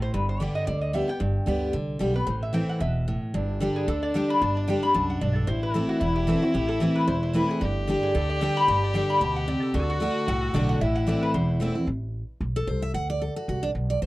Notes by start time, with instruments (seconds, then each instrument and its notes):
Already playing: steel-string acoustic guitar A2
0.02 resonator guitar played with a steel bar C5
0.14 upright bass G1, steel-string acoustic guitar G2, resonator guitar played with a steel bar B4
0.29 resonator guitar played with a steel bar C5
0.40 steel-string acoustic guitar D3 G3 B3 G4, resonator guitar played with a steel bar D5
0.55 resonator guitar played with a steel bar D#5
0.67 upright bass D2, steel-string acoustic guitar D3, resonator guitar played with a steel bar D5
0.81 resonator guitar played with a steel bar D#5
0.93 steel-string acoustic guitar D3 G3 B3 G4, resonator guitar played with a steel bar E5
1.08 steel-string acoustic guitar B3 G4, resonator guitar played with a steel bar G5
1.20 upright bass G1, steel-string acoustic guitar G2
1.46 upright bass D2, steel-string acoustic guitar D3 G3 B3 G4
1.73 upright bass C2, steel-string acoustic guitar D3
1.99 upright bass B1, steel-string acoustic guitar D3 G3 B3 G4
2.14 steel-string acoustic guitar B3 G4, resonator guitar played with a steel bar B4
2.27 upright bass A1, steel-string acoustic guitar A2, resonator guitar played with a steel bar C5
2.43 resonator guitar played with a steel bar E5
2.53 steel-string acoustic guitar E3 A3 C4 E4, resonator guitar played with a steel bar G5
2.69 resonator guitar played with a steel bar F#5
2.80 upright bass E1, steel-string acoustic guitar B2, resonator guitar played with a steel bar E5
3.08 steel-string acoustic guitar A2
3.34 upright bass G1, steel-string acoustic guitar G2, fiddle D4
3.60 steel-string acoustic guitar D3 G3 D4 G4
3.76 resonator guitar played with a steel bar G#4
3.87 upright bass D2, steel-string acoustic guitar D3, resonator guitar played with a steel bar A4
4.03 resonator guitar played with a steel bar D5
4.14 steel-string acoustic guitar D3 G3 D4 G4, resonator guitar played with a steel bar G5
4.30 resonator guitar played with a steel bar B5
4.41 upright bass G1, steel-string acoustic guitar G2, resonator guitar played with a steel bar A5
4.57 resonator guitar played with a steel bar D5
4.68 steel-string acoustic guitar D3 G3 D4 G4, resonator guitar played with a steel bar G5
4.82 steel-string acoustic guitar D4 G4, resonator guitar played with a steel bar B5
4.94 upright bass C2, steel-string acoustic guitar F#2, resonator guitar played with a steel bar A5
5.10 resonator guitar played with a steel bar F#5
5.21 upright bass B1, steel-string acoustic guitar G2, resonator guitar played with a steel bar D5
5.35 resonator guitar played with a steel bar A4
5.47 upright bass A1, steel-string acoustic guitar A2, fiddle E4, resonator guitar played with a steel bar C5
5.63 resonator guitar played with a steel bar B4
5.74 steel-string acoustic guitar E3 A3 C4 E4, resonator guitar played with a steel bar A4
5.89 resonator guitar played with a steel bar F#4
6.00 upright bass E1, steel-string acoustic guitar E2, resonator guitar played with a steel bar E4
6.16 resonator guitar played with a steel bar G4
6.27 steel-string acoustic guitar E3 A3 C4 E4, resonator guitar played with a steel bar A4
6.42 steel-string acoustic guitar C4 E4, resonator guitar played with a steel bar F#4
6.54 upright bass A1, steel-string acoustic guitar A2, resonator guitar played with a steel bar G4
6.69 resonator guitar played with a steel bar A4
6.80 steel-string acoustic guitar E3 A3 C4 E4, resonator guitar played with a steel bar G4
6.96 resonator guitar played with a steel bar B4
7.08 upright bass E1, steel-string acoustic guitar E2, resonator guitar played with a steel bar C5
7.23 resonator guitar played with a steel bar C5
7.34 steel-string acoustic guitar E3 A3 C4 E4, resonator guitar played with a steel bar B4
7.51 resonator guitar played with a steel bar G#4
7.61 upright bass G1, steel-string acoustic guitar G2, fiddle G4
7.87 steel-string acoustic guitar D3 G3 D4 G4
8.03 resonator guitar played with a steel bar G#4
8.15 upright bass D2, steel-string acoustic guitar D3, resonator guitar played with a steel bar A4
8.30 resonator guitar played with a steel bar D5
8.41 steel-string acoustic guitar D3 G3 D4 G4, resonator guitar played with a steel bar G5
8.57 resonator guitar played with a steel bar B5
8.68 upright bass G1, steel-string acoustic guitar G2, resonator guitar played with a steel bar A5
8.84 resonator guitar played with a steel bar D5
8.94 steel-string acoustic guitar D3 G3 D4 G4, resonator guitar played with a steel bar G5
9.10 resonator guitar played with a steel bar B5
9.21 upright bass D2, steel-string acoustic guitar B2, resonator guitar played with a steel bar A5
9.36 resonator guitar played with a steel bar F#5
9.48 steel-string acoustic guitar C3, resonator guitar played with a steel bar D5
9.63 resonator guitar played with a steel bar A4
9.74 upright bass D2, steel-string acoustic guitar D3, fiddle F#4, resonator guitar played with a steel bar A4
9.90 resonator guitar played with a steel bar F#4
10.00 steel-string acoustic guitar D3 A3 D4 F#4
10.28 upright bass C2, steel-string acoustic guitar A2, resonator guitar played with a steel bar F#5
10.42 resonator guitar played with a steel bar A4
10.54 upright bass B1, steel-string acoustic guitar D3 A3 D4 F#4, resonator guitar played with a steel bar D5
10.69 resonator guitar played with a steel bar F#5
10.81 upright bass A1, steel-string acoustic guitar A2, fiddle E4, resonator guitar played with a steel bar E5
10.95 resonator guitar played with a steel bar F#5
11.07 steel-string acoustic guitar E3 A3 C4 E4, resonator guitar played with a steel bar D5
11.23 resonator guitar played with a steel bar B4
11.34 upright bass E1, steel-string acoustic guitar E2, resonator guitar played with a steel bar C5
11.60 steel-string acoustic guitar E3 A3 C4 E4
11.75 steel-string acoustic guitar C4 E4
11.87 upright bass A1
12.41 upright bass B1
12.56 steel-string acoustic guitar A4
12.67 upright bass C2, steel-string acoustic guitar C5
12.82 steel-string acoustic guitar E5
12.94 upright bass D2, steel-string acoustic guitar F#5
13.10 steel-string acoustic guitar D5
13.21 steel-string acoustic guitar A4
13.36 steel-string acoustic guitar F#4
13.48 upright bass C2, steel-string acoustic guitar F#4
13.63 steel-string acoustic guitar D4
13.75 upright bass B1
13.90 steel-string acoustic guitar D5
14.02 upright bass A1, steel-string acoustic guitar C5